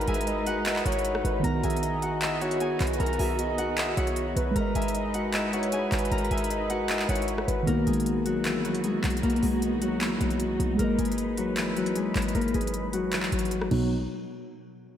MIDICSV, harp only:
0, 0, Header, 1, 2, 480
1, 0, Start_track
1, 0, Key_signature, 5, "major"
1, 0, Tempo, 389610
1, 1774, Time_signature, 4, 2, 24, 8
1, 18446, End_track
2, 0, Start_track
2, 0, Title_t, "Harp"
2, 0, Program_c, 0, 46
2, 0, Note_on_c, 0, 64, 72
2, 0, Note_on_c, 0, 66, 62
2, 0, Note_on_c, 0, 70, 85
2, 0, Note_on_c, 0, 76, 89
2, 0, Note_on_c, 0, 78, 77
2, 0, Note_on_c, 0, 82, 108
2, 97, Note_on_c, 0, 80, 93
2, 106, Note_on_c, 0, 68, 67
2, 569, Note_off_c, 0, 78, 0
2, 574, Note_on_c, 0, 78, 99
2, 579, Note_off_c, 0, 66, 0
2, 584, Note_on_c, 0, 66, 69
2, 810, Note_off_c, 0, 76, 0
2, 815, Note_on_c, 0, 76, 79
2, 819, Note_off_c, 0, 64, 0
2, 824, Note_on_c, 0, 64, 60
2, 1052, Note_off_c, 0, 78, 0
2, 1057, Note_on_c, 0, 78, 85
2, 1062, Note_off_c, 0, 66, 0
2, 1067, Note_on_c, 0, 66, 64
2, 1578, Note_off_c, 0, 82, 0
2, 1773, Note_on_c, 0, 82, 115
2, 1778, Note_off_c, 0, 70, 0
2, 1783, Note_on_c, 0, 70, 79
2, 1945, Note_off_c, 0, 80, 0
2, 2014, Note_on_c, 0, 80, 85
2, 2019, Note_off_c, 0, 68, 0
2, 2024, Note_on_c, 0, 68, 67
2, 2490, Note_off_c, 0, 78, 0
2, 2495, Note_on_c, 0, 78, 84
2, 2500, Note_off_c, 0, 66, 0
2, 2505, Note_on_c, 0, 66, 64
2, 2730, Note_off_c, 0, 76, 0
2, 2735, Note_on_c, 0, 76, 86
2, 2740, Note_off_c, 0, 64, 0
2, 2745, Note_on_c, 0, 64, 73
2, 2969, Note_off_c, 0, 78, 0
2, 2974, Note_on_c, 0, 78, 85
2, 2979, Note_off_c, 0, 66, 0
2, 2984, Note_on_c, 0, 66, 67
2, 3208, Note_off_c, 0, 80, 0
2, 3213, Note_on_c, 0, 80, 86
2, 3218, Note_off_c, 0, 68, 0
2, 3223, Note_on_c, 0, 68, 64
2, 3497, Note_off_c, 0, 82, 0
2, 3693, Note_on_c, 0, 82, 109
2, 3698, Note_off_c, 0, 70, 0
2, 3703, Note_on_c, 0, 70, 88
2, 3929, Note_off_c, 0, 80, 0
2, 3934, Note_on_c, 0, 80, 78
2, 3939, Note_off_c, 0, 68, 0
2, 3944, Note_on_c, 0, 68, 68
2, 4409, Note_off_c, 0, 78, 0
2, 4414, Note_on_c, 0, 78, 97
2, 4419, Note_off_c, 0, 66, 0
2, 4424, Note_on_c, 0, 66, 74
2, 4648, Note_off_c, 0, 76, 0
2, 4653, Note_on_c, 0, 76, 84
2, 4658, Note_off_c, 0, 64, 0
2, 4663, Note_on_c, 0, 64, 62
2, 4889, Note_off_c, 0, 78, 0
2, 4894, Note_on_c, 0, 78, 76
2, 4899, Note_off_c, 0, 66, 0
2, 4904, Note_on_c, 0, 66, 62
2, 5417, Note_off_c, 0, 82, 0
2, 5612, Note_on_c, 0, 82, 103
2, 5616, Note_off_c, 0, 70, 0
2, 5621, Note_on_c, 0, 70, 84
2, 5782, Note_off_c, 0, 80, 0
2, 5856, Note_on_c, 0, 80, 86
2, 5861, Note_off_c, 0, 68, 0
2, 5866, Note_on_c, 0, 68, 70
2, 6331, Note_off_c, 0, 78, 0
2, 6336, Note_on_c, 0, 78, 76
2, 6341, Note_off_c, 0, 66, 0
2, 6346, Note_on_c, 0, 66, 61
2, 6569, Note_off_c, 0, 76, 0
2, 6574, Note_on_c, 0, 76, 86
2, 6579, Note_off_c, 0, 64, 0
2, 6583, Note_on_c, 0, 64, 74
2, 6808, Note_off_c, 0, 78, 0
2, 6813, Note_on_c, 0, 78, 81
2, 6818, Note_off_c, 0, 66, 0
2, 6823, Note_on_c, 0, 66, 62
2, 7051, Note_off_c, 0, 80, 0
2, 7056, Note_on_c, 0, 80, 79
2, 7061, Note_off_c, 0, 68, 0
2, 7066, Note_on_c, 0, 68, 63
2, 7336, Note_off_c, 0, 82, 0
2, 7533, Note_on_c, 0, 82, 108
2, 7538, Note_off_c, 0, 70, 0
2, 7543, Note_on_c, 0, 70, 83
2, 7771, Note_off_c, 0, 80, 0
2, 7776, Note_on_c, 0, 80, 92
2, 7781, Note_off_c, 0, 68, 0
2, 7786, Note_on_c, 0, 68, 65
2, 8248, Note_off_c, 0, 78, 0
2, 8253, Note_on_c, 0, 78, 96
2, 8258, Note_off_c, 0, 66, 0
2, 8263, Note_on_c, 0, 66, 69
2, 8489, Note_off_c, 0, 76, 0
2, 8494, Note_on_c, 0, 76, 80
2, 8499, Note_off_c, 0, 64, 0
2, 8504, Note_on_c, 0, 64, 60
2, 8731, Note_off_c, 0, 78, 0
2, 8736, Note_on_c, 0, 78, 85
2, 8741, Note_off_c, 0, 66, 0
2, 8746, Note_on_c, 0, 66, 63
2, 9257, Note_off_c, 0, 82, 0
2, 9447, Note_off_c, 0, 70, 0
2, 9452, Note_on_c, 0, 70, 106
2, 9463, Note_on_c, 0, 58, 80
2, 9624, Note_off_c, 0, 80, 0
2, 9687, Note_off_c, 0, 68, 0
2, 9692, Note_on_c, 0, 68, 84
2, 9702, Note_on_c, 0, 56, 63
2, 10168, Note_off_c, 0, 66, 0
2, 10173, Note_on_c, 0, 66, 80
2, 10183, Note_on_c, 0, 54, 60
2, 10409, Note_off_c, 0, 64, 0
2, 10414, Note_on_c, 0, 64, 88
2, 10423, Note_on_c, 0, 52, 68
2, 10617, Note_off_c, 0, 76, 0
2, 10647, Note_off_c, 0, 54, 0
2, 10647, Note_off_c, 0, 66, 0
2, 10652, Note_on_c, 0, 66, 84
2, 10662, Note_on_c, 0, 54, 67
2, 10717, Note_off_c, 0, 78, 0
2, 10886, Note_off_c, 0, 68, 0
2, 10887, Note_off_c, 0, 56, 0
2, 10891, Note_on_c, 0, 68, 83
2, 10901, Note_on_c, 0, 56, 65
2, 11368, Note_off_c, 0, 70, 0
2, 11373, Note_on_c, 0, 70, 106
2, 11378, Note_off_c, 0, 58, 0
2, 11383, Note_on_c, 0, 58, 86
2, 11609, Note_off_c, 0, 56, 0
2, 11609, Note_off_c, 0, 68, 0
2, 11614, Note_on_c, 0, 68, 78
2, 11624, Note_on_c, 0, 56, 65
2, 12089, Note_off_c, 0, 66, 0
2, 12090, Note_off_c, 0, 54, 0
2, 12094, Note_on_c, 0, 66, 96
2, 12105, Note_on_c, 0, 54, 73
2, 12328, Note_off_c, 0, 52, 0
2, 12328, Note_off_c, 0, 64, 0
2, 12333, Note_on_c, 0, 64, 83
2, 12343, Note_on_c, 0, 52, 63
2, 12569, Note_off_c, 0, 54, 0
2, 12569, Note_off_c, 0, 66, 0
2, 12574, Note_on_c, 0, 66, 78
2, 12584, Note_on_c, 0, 54, 64
2, 13287, Note_off_c, 0, 70, 0
2, 13292, Note_on_c, 0, 70, 105
2, 13296, Note_off_c, 0, 58, 0
2, 13301, Note_on_c, 0, 58, 80
2, 13356, Note_off_c, 0, 52, 0
2, 13356, Note_off_c, 0, 54, 0
2, 13356, Note_off_c, 0, 56, 0
2, 13531, Note_off_c, 0, 68, 0
2, 13536, Note_on_c, 0, 68, 85
2, 13545, Note_on_c, 0, 56, 68
2, 14011, Note_off_c, 0, 66, 0
2, 14016, Note_on_c, 0, 66, 74
2, 14026, Note_on_c, 0, 54, 61
2, 14248, Note_off_c, 0, 64, 0
2, 14253, Note_on_c, 0, 64, 86
2, 14264, Note_on_c, 0, 52, 73
2, 14488, Note_off_c, 0, 54, 0
2, 14488, Note_off_c, 0, 66, 0
2, 14493, Note_on_c, 0, 66, 76
2, 14503, Note_on_c, 0, 54, 61
2, 14731, Note_off_c, 0, 56, 0
2, 14731, Note_off_c, 0, 68, 0
2, 14736, Note_on_c, 0, 68, 80
2, 14745, Note_on_c, 0, 56, 65
2, 15209, Note_off_c, 0, 70, 0
2, 15214, Note_on_c, 0, 70, 103
2, 15218, Note_off_c, 0, 58, 0
2, 15223, Note_on_c, 0, 58, 83
2, 15435, Note_off_c, 0, 70, 0
2, 15441, Note_off_c, 0, 58, 0
2, 15451, Note_off_c, 0, 56, 0
2, 15451, Note_off_c, 0, 68, 0
2, 15456, Note_on_c, 0, 68, 94
2, 15466, Note_on_c, 0, 56, 65
2, 15676, Note_off_c, 0, 68, 0
2, 15927, Note_off_c, 0, 66, 0
2, 15928, Note_off_c, 0, 54, 0
2, 15932, Note_on_c, 0, 66, 95
2, 15942, Note_on_c, 0, 54, 67
2, 16155, Note_off_c, 0, 66, 0
2, 16169, Note_off_c, 0, 52, 0
2, 16169, Note_off_c, 0, 64, 0
2, 16174, Note_on_c, 0, 64, 79
2, 16184, Note_on_c, 0, 52, 61
2, 16395, Note_off_c, 0, 64, 0
2, 16411, Note_off_c, 0, 54, 0
2, 16416, Note_on_c, 0, 66, 82
2, 16425, Note_on_c, 0, 54, 62
2, 16866, Note_off_c, 0, 66, 0
2, 16878, Note_off_c, 0, 54, 0
2, 16893, Note_on_c, 0, 54, 91
2, 16956, Note_off_c, 0, 52, 0
2, 16956, Note_off_c, 0, 56, 0
2, 17117, Note_off_c, 0, 54, 0
2, 18446, End_track
0, 0, End_of_file